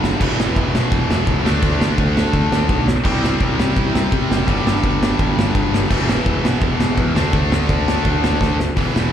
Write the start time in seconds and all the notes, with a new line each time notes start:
Already playing: F#1 G2 D3 G3
0.04 snare
0.20 E1 E2 B2 E3, kick, crash
0.40 snare
0.56 E1, kick, ride
0.74 E1, snare
0.92 E1, kick, ride
1.10 E1, snare
1.27 C#2, kick, ride
1.44 D2 D3 A3 D4, snare
1.62 D2, kick, ride
1.80 D2, snare
1.98 D2, kick, ride
2.17 snare
2.33 D2, kick, ride
2.52 D2, snare
2.69 B1, kick, ride
2.88 snare
3.04 C2 C3 G3 C4, kick, crash
3.24 snare
3.40 C2, kick, ride
3.59 C2, snare
3.76 C2, kick, ride
3.95 C2, snare
4.12 C3, kick, ride
4.30 F#1, snare
4.46 G1 G2 D3 G3, kick, ride
4.65 G1, snare
4.83 G1, kick, ride
5.03 snare
5.19 G1, kick, ride
5.37 G1, snare
5.55 G1, kick, ride
5.74 snare
5.90 E1 E2 B2 E3, kick, crash
6.09 snare
6.26 E1, kick, ride
6.44 E1, snare
6.61 E1, kick, ride
6.80 E1, snare
6.98 E2, kick, ride
7.15 D2 D3 A3 D4, snare
7.33 D2, kick, ride
7.51 D2, snare
7.69 D2, kick, ride
7.88 snare
8.05 D2, kick, ride
8.22 D2, snare
8.41 D2, kick, snare
8.60 snare
8.76 E1 E2 B2 E3, kick, open hi-hat
8.94 E1, snare